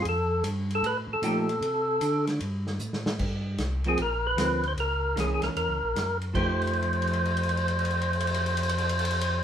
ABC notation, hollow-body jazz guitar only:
X:1
M:4/4
L:1/8
Q:"Swing" 1/4=152
K:Fmix
V:1 name="Hollow-body jazz guitar"
z6 [F,A,EG] z | z8 | z3 [F,B,C] z2 [F,B,C] z | z2 [_F,B,_D]3 z3 |
[F,A,EG]8- | [F,A,EG]8 |]